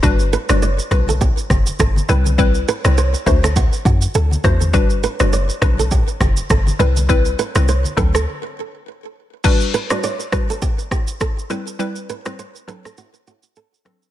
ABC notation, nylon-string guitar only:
X:1
M:4/4
L:1/16
Q:"Swing 16ths" 1/4=102
K:G
V:1 name="Nylon-string guitar"
z2 B d d z B A G z G z A z B z | z2 B c c z B A F z F z A z B z | z2 B d d z B A G z G z A z B z | z2 B c c z B A z8 |
z2 B d d z B A G z G z A z B z | z2 B c c z B A F z F z A z B z |]